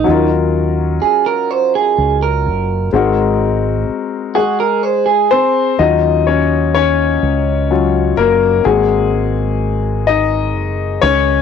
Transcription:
<<
  \new Staff \with { instrumentName = "Clean electric guitar" } { \time 6/8 \key ees \dorian \tempo 4. = 42 ees'16 r8. aes'16 bes'16 c''16 aes'8 bes'8. | r4. ges'16 bes'16 c''16 aes'8. | r2. | r2. | }
  \new Staff \with { instrumentName = "Grand piano" } { \time 6/8 \key ees \dorian << { <ges des' ees' f' bes'>2. | <aes c' ees' ges' bes'>4. <aes aes'>4 <c' c''>8 | <ees' ees''>8 <des' des''>8 <des' des''>4. <bes bes'>8 | <aes aes'>4. <ees' ees''>4 <des' des''>8 | } \\ { r2. | r2. | <ges des' f'>8 r4. <ges des' f'>8 r8 | <bes c' ges'>4. r4. | } >> }
  \new Staff \with { instrumentName = "Fingered electric bass" } { \clef bass \time 6/8 \key ees \dorian ees,4 r4 des,8 ges,,8 | aes,,4 r2 | ees,4. des,4 ges,,8 | aes,,2 ges,,8 des,8 | }
>>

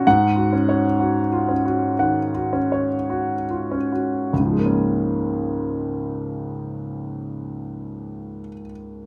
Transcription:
<<
  \new Staff \with { instrumentName = "Grand piano" } { \time 4/4 \key des \major \tempo 4 = 50 \tuplet 3/2 { r8 ges'8 des''8 ges'8 f'8 ges'8 ges''8 ges'8 des''8 ges'8 f'8 ges'8 } | r1 | }
  \new Staff \with { instrumentName = "Grand piano" } { \time 4/4 \key des \major <aes, ges''>8 des'4 des'8 ees8 des'4 des'8 | <des, aes, f aes bes des'>1 | }
>>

